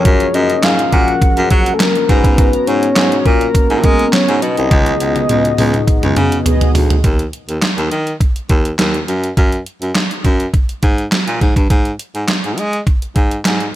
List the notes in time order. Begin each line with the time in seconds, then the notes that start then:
Already playing: F3 C#4 G#4 A#4 C#5
0.05 F#2, kick, closed hi-hat
0.20 closed hi-hat
0.34 F#2 D#5, closed hi-hat
0.50 closed hi-hat
0.63 G#2 F5, snare, clap, closed hi-hat
0.79 closed hi-hat
0.92 A#2 F#5, kick, closed hi-hat
1.08 closed hi-hat
1.22 kick, closed hi-hat
1.37 F#2, closed hi-hat
1.50 F#3 F#5, kick, closed hi-hat
1.66 closed hi-hat
1.74 A4
1.80 A#4, snare, clap, closed hi-hat
1.96 closed hi-hat
2.08 G#2 B3 C#4 F#4 B4 A#5, kick, closed hi-hat
2.24 kick, closed hi-hat
2.38 kick, closed hi-hat
2.53 closed hi-hat
2.67 G#2 C#5, closed hi-hat
2.83 closed hi-hat
2.96 G#2, snare, clap, closed hi-hat
3.12 closed hi-hat
3.26 A#2 A#4, kick, closed hi-hat
3.41 closed hi-hat
3.55 kick, closed hi-hat
3.70 G#2, closed hi-hat
3.84 G#3 A#4, kick, closed hi-hat
3.99 closed hi-hat
4.13 C#5, snare, clap, closed hi-hat
4.28 G#2, closed hi-hat
4.42 B2 D#5, closed hi-hat
4.57 C2, closed hi-hat
4.70 C#2 B3 D#4 F#4 G#4, kick, closed hi-hat, high tom
4.86 closed hi-hat, high tom
5.00 C#2, closed hi-hat
5.16 closed hi-hat, high tom
5.29 C#2 B3 G#4 D#5, closed hi-hat, mid tom
5.45 closed hi-hat
5.58 C#2 B3 G#4 D#5, open hi-hat, mid tom
5.74 closed hi-hat, mid tom
5.87 kick, closed hi-hat
6.03 C#2, closed hi-hat, mid tom
6.16 C#3, closed hi-hat, mid tom
6.32 closed hi-hat
6.46 B3 G#4 D#5, closed hi-hat, floor tom
6.61 closed hi-hat, floor tom
6.75 D2, floor tom, open hi-hat
6.90 closed hi-hat, floor tom
7.04 D#2, kick, closed hi-hat
7.19 closed hi-hat
7.33 closed hi-hat
7.49 D#2, closed hi-hat
7.62 snare, clap, closed hi-hat
7.78 D#2, closed hi-hat
7.91 D#3, closed hi-hat
8.07 closed hi-hat
8.21 kick, closed hi-hat
8.36 closed hi-hat
8.49 D#2, kick, closed hi-hat
8.65 closed hi-hat
8.79 D#2, snare, clap, closed hi-hat
8.94 closed hi-hat
9.08 F#2, closed hi-hat
9.24 closed hi-hat
9.37 F#2, kick, closed hi-hat
9.52 closed hi-hat
9.66 closed hi-hat
9.82 F#2, closed hi-hat
9.95 snare, clap, closed hi-hat
10.11 closed hi-hat
10.25 F#2, kick, closed hi-hat
10.40 closed hi-hat
10.54 kick, closed hi-hat
10.69 closed hi-hat
10.83 G#2, kick, closed hi-hat
10.98 closed hi-hat
11.12 snare, clap, closed hi-hat
11.27 A#2, closed hi-hat
11.41 G#2, kick, closed hi-hat
11.56 G2, kick, closed hi-hat
11.70 G#2, kick, closed hi-hat
11.85 closed hi-hat
11.99 closed hi-hat
12.15 G#2, closed hi-hat
12.28 snare, clap, closed hi-hat
12.44 G#2, closed hi-hat
12.58 G#3, closed hi-hat
12.73 closed hi-hat
12.87 kick, closed hi-hat
13.02 closed hi-hat
13.16 G#2, kick, closed hi-hat
13.31 closed hi-hat
13.45 G#2, snare, clap, closed hi-hat
13.60 closed hi-hat